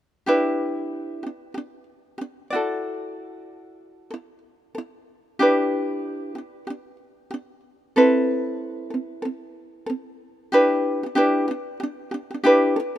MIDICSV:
0, 0, Header, 1, 2, 480
1, 0, Start_track
1, 0, Key_signature, 1, "minor"
1, 0, Tempo, 641026
1, 201, Time_signature, 4, 2, 24, 8
1, 9719, End_track
2, 0, Start_track
2, 0, Title_t, "Ukulele"
2, 0, Program_c, 0, 24
2, 197, Note_on_c, 0, 67, 54
2, 205, Note_on_c, 0, 62, 64
2, 212, Note_on_c, 0, 64, 67
2, 213, Note_on_c, 0, 71, 68
2, 911, Note_off_c, 0, 67, 0
2, 920, Note_on_c, 0, 67, 35
2, 927, Note_off_c, 0, 71, 0
2, 944, Note_off_c, 0, 62, 0
2, 947, Note_on_c, 0, 62, 40
2, 970, Note_off_c, 0, 64, 0
2, 1122, Note_off_c, 0, 67, 0
2, 1136, Note_off_c, 0, 62, 0
2, 1155, Note_on_c, 0, 67, 46
2, 1180, Note_on_c, 0, 62, 49
2, 1360, Note_off_c, 0, 67, 0
2, 1372, Note_off_c, 0, 62, 0
2, 1632, Note_on_c, 0, 67, 48
2, 1657, Note_on_c, 0, 62, 55
2, 1838, Note_off_c, 0, 67, 0
2, 1851, Note_off_c, 0, 62, 0
2, 1875, Note_on_c, 0, 74, 54
2, 1891, Note_on_c, 0, 66, 55
2, 1902, Note_on_c, 0, 64, 54
2, 1912, Note_on_c, 0, 69, 47
2, 3065, Note_off_c, 0, 69, 0
2, 3074, Note_on_c, 0, 69, 44
2, 3087, Note_off_c, 0, 66, 0
2, 3098, Note_off_c, 0, 64, 0
2, 3098, Note_on_c, 0, 64, 51
2, 3121, Note_off_c, 0, 74, 0
2, 3280, Note_off_c, 0, 69, 0
2, 3292, Note_off_c, 0, 64, 0
2, 3554, Note_on_c, 0, 69, 48
2, 3581, Note_on_c, 0, 64, 55
2, 3760, Note_off_c, 0, 69, 0
2, 3773, Note_off_c, 0, 64, 0
2, 4038, Note_on_c, 0, 67, 68
2, 4046, Note_on_c, 0, 62, 64
2, 4051, Note_on_c, 0, 64, 64
2, 4060, Note_on_c, 0, 71, 66
2, 4747, Note_off_c, 0, 67, 0
2, 4756, Note_on_c, 0, 67, 41
2, 4764, Note_off_c, 0, 62, 0
2, 4780, Note_on_c, 0, 62, 38
2, 4802, Note_off_c, 0, 64, 0
2, 4961, Note_off_c, 0, 67, 0
2, 4973, Note_off_c, 0, 62, 0
2, 4994, Note_on_c, 0, 67, 47
2, 5019, Note_on_c, 0, 62, 53
2, 5200, Note_off_c, 0, 67, 0
2, 5213, Note_off_c, 0, 62, 0
2, 5471, Note_on_c, 0, 67, 51
2, 5495, Note_on_c, 0, 62, 54
2, 5678, Note_off_c, 0, 67, 0
2, 5690, Note_off_c, 0, 62, 0
2, 5960, Note_on_c, 0, 69, 55
2, 5965, Note_on_c, 0, 60, 59
2, 5969, Note_off_c, 0, 71, 0
2, 5972, Note_on_c, 0, 64, 65
2, 5972, Note_on_c, 0, 71, 74
2, 6658, Note_off_c, 0, 69, 0
2, 6664, Note_off_c, 0, 71, 0
2, 6667, Note_on_c, 0, 69, 35
2, 6684, Note_off_c, 0, 60, 0
2, 6694, Note_on_c, 0, 60, 40
2, 6876, Note_off_c, 0, 69, 0
2, 6890, Note_off_c, 0, 60, 0
2, 6905, Note_on_c, 0, 69, 46
2, 6928, Note_on_c, 0, 60, 52
2, 7115, Note_off_c, 0, 69, 0
2, 7127, Note_off_c, 0, 60, 0
2, 7386, Note_on_c, 0, 69, 50
2, 7410, Note_on_c, 0, 60, 53
2, 7595, Note_off_c, 0, 69, 0
2, 7607, Note_off_c, 0, 60, 0
2, 7877, Note_on_c, 0, 67, 64
2, 7884, Note_off_c, 0, 64, 0
2, 7886, Note_on_c, 0, 62, 64
2, 7887, Note_on_c, 0, 64, 67
2, 7893, Note_on_c, 0, 71, 68
2, 8252, Note_off_c, 0, 67, 0
2, 8261, Note_on_c, 0, 67, 40
2, 8267, Note_off_c, 0, 62, 0
2, 8268, Note_off_c, 0, 64, 0
2, 8270, Note_off_c, 0, 71, 0
2, 8284, Note_on_c, 0, 62, 45
2, 8342, Note_off_c, 0, 67, 0
2, 8347, Note_off_c, 0, 62, 0
2, 8351, Note_on_c, 0, 67, 68
2, 8356, Note_on_c, 0, 62, 67
2, 8365, Note_on_c, 0, 64, 71
2, 8369, Note_on_c, 0, 71, 71
2, 8586, Note_off_c, 0, 67, 0
2, 8594, Note_on_c, 0, 67, 59
2, 8598, Note_off_c, 0, 62, 0
2, 8602, Note_off_c, 0, 64, 0
2, 8604, Note_off_c, 0, 71, 0
2, 8618, Note_on_c, 0, 62, 57
2, 8798, Note_off_c, 0, 67, 0
2, 8810, Note_off_c, 0, 62, 0
2, 8835, Note_on_c, 0, 67, 51
2, 8861, Note_on_c, 0, 62, 61
2, 9038, Note_off_c, 0, 67, 0
2, 9051, Note_off_c, 0, 62, 0
2, 9070, Note_on_c, 0, 67, 50
2, 9091, Note_on_c, 0, 62, 55
2, 9206, Note_off_c, 0, 67, 0
2, 9215, Note_on_c, 0, 67, 40
2, 9229, Note_off_c, 0, 62, 0
2, 9243, Note_on_c, 0, 62, 45
2, 9303, Note_off_c, 0, 67, 0
2, 9310, Note_off_c, 0, 62, 0
2, 9312, Note_on_c, 0, 67, 68
2, 9319, Note_on_c, 0, 62, 66
2, 9325, Note_on_c, 0, 64, 66
2, 9332, Note_on_c, 0, 71, 76
2, 9553, Note_off_c, 0, 71, 0
2, 9554, Note_off_c, 0, 67, 0
2, 9556, Note_on_c, 0, 69, 53
2, 9558, Note_off_c, 0, 62, 0
2, 9561, Note_off_c, 0, 64, 0
2, 9582, Note_on_c, 0, 64, 64
2, 9692, Note_off_c, 0, 69, 0
2, 9714, Note_off_c, 0, 64, 0
2, 9719, End_track
0, 0, End_of_file